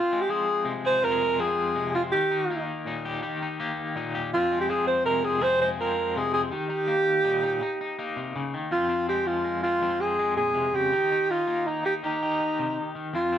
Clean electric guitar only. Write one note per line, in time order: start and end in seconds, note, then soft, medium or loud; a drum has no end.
0.00 0.28 C4 medium
0.13 0.64 G#3 medium
0.29 1.38 F3 medium
0.29 1.38 C4 medium
0.65 1.38 C3 medium
0.65 1.20 G#3 medium
0.85 1.02 G#4 medium
1.02 2.12 F2 medium
1.02 1.12 F4 medium
1.12 2.12 G#4 medium
1.21 1.74 G#3 medium
1.39 2.10 F3 medium
1.39 1.93 C4 medium
1.75 2.10 C3 medium
1.75 2.12 G#3 medium
1.94 2.12 C4 medium
2.14 3.21 D#3 medium
2.14 2.30 D#4 soft
2.31 2.49 D#4 medium
2.50 3.58 A#3 medium
2.50 2.86 D#4 medium
2.86 3.22 A#2 medium
2.86 3.41 D#4 medium
3.05 3.21 G4 medium
3.22 4.32 D#3 medium
3.22 3.59 G4 medium
3.42 3.95 D#4 medium
3.60 4.30 A#3 medium
3.60 4.14 G4 medium
3.96 4.32 A#2 medium
3.96 4.30 D#4 medium
4.15 4.30 G4 medium
4.34 5.40 F2 medium
4.34 4.69 C4 medium
4.52 5.04 G#3 medium
4.69 5.78 F3 medium
4.69 5.23 C4 medium
5.05 5.78 C3 medium
5.05 5.60 G#3 medium
5.24 5.79 C4 medium
5.41 6.51 F2 medium
5.41 6.49 G#4 medium
5.62 6.15 G#3 medium
5.80 6.50 F3 medium
5.80 6.34 C4 medium
6.16 6.50 C3 medium
6.16 6.53 G#3 medium
6.35 6.51 C4 medium
6.51 7.60 D#3 medium
6.51 6.69 D#4 medium
6.70 6.88 D#4 medium
6.88 7.97 A#3 medium
7.24 7.61 A#2 medium
7.24 7.42 D#4 medium
7.43 7.61 D#4 medium
7.61 7.80 D#4 medium
7.61 muted clean electric guitar stroke medium
7.81 7.98 D#4 medium
7.99 8.70 A#3 medium
7.99 8.70 D#4 medium
8.16 8.35 C3 medium
8.36 8.53 C#3 medium
8.54 8.72 D#3 medium
8.71 9.80 F2 medium
8.71 8.88 C4 medium
8.89 9.63 C4 medium
9.09 9.43 G#3 medium
9.26 10.90 F3 medium
9.44 10.18 G#3 medium
9.64 9.81 C4 medium
9.82 10.92 F2 medium
9.82 9.99 C4 medium
10.00 10.92 C4 medium
10.19 10.92 G#3 medium
10.37 10.54 A#2 medium
10.54 10.73 C3 medium
10.74 10.92 C#3 medium
10.93 12.02 D#3 medium
10.93 11.11 D#4 medium
11.12 11.29 D#4 medium
11.30 11.67 D#4 medium
11.47 13.11 A#3 medium
11.68 11.84 D#4 medium
11.85 12.39 D#4 soft
12.03 12.94 D#3 medium
12.03 12.22 G4 medium
12.23 13.12 G4 medium
12.40 13.11 D#4 medium
12.59 12.77 C3 medium
12.95 13.14 D#3 medium
13.14 13.38 F2 medium
13.14 13.31 C4 medium
13.32 13.38 C4 medium